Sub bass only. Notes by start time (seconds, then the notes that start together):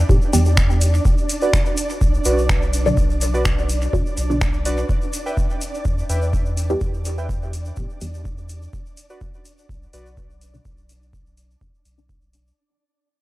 0.09 A2
0.33 E2
2.01 B1
2.25 B1
2.97 B1
3.93 E2
4.17 B1
5.85 E2
6.09 E2
6.81 E2
7.77 A2
8.01 E2
9.69 B1
9.93 B1
10.65 B1
11.61 E2
11.85 B1